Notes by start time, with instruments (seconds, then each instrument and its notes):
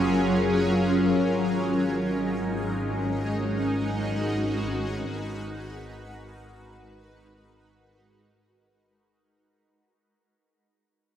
Already playing: double bass section F#1, ambient pad F#3 C#4 F4 G#4 A#4
1.23 double bass section G#1, ambient pad G#3
1.35 ambient pad D#4
2.15 ambient pad F#4
3.42 ambient pad B4